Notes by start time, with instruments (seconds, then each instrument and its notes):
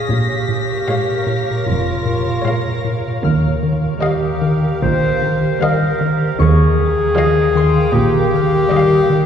Already playing: harp D#5 C#6 D#6 G#6, violin section A#6 B6
0.08 double bass section A#1, cello section A#2, analog synth bass A#2, clarinet G4, ambient pad A#4 C#5 F5
0.49 analog synth bass A#2
0.88 analog synth bass A#2, viola section G#3, violin section C#5 F5
1.27 analog synth bass A#2
1.53 violin section A#6
1.66 double bass section F1, cello section F2, analog synth bass A#2, clarinet F4
2.05 analog synth bass A#2
2.45 analog synth bass A#2, viola section G#3, violin section C#5 F5
2.85 analog synth bass A#2
3.22 double bass section D#2, cello section D#2, analog synth bass D#3, ambient pad G4 A#4 F5, harp F6
3.63 analog synth bass D#3
4.02 analog synth bass D#3, viola section G3, clarinet G4, violin section D#5 F5
4.42 analog synth bass D#3
4.82 double bass section A#1, cello section A#2, analog synth bass D#3, clarinet C5
5.22 analog synth bass D#3
5.62 analog synth bass D#3, viola section G3, clarinet A#4, violin section D#5 F5
6.01 analog synth bass D#3
6.39 cello section D#2, double bass section D#2, analog synth bass D#3, clarinet G#4, ambient pad A#4 F5 G5, harp C#6
6.79 analog synth bass D#3
7.17 analog synth bass D#3, viola section F3, violin section D#5 F5
7.56 analog synth bass D#3, harp C6
7.93 double bass section A#1, cello section A#2, analog synth bass D#3, clarinet G4
8.34 analog synth bass D#3, harp F5
8.71 analog synth bass D#3, viola section G3, violin section D#5 F5
9.10 analog synth bass D#3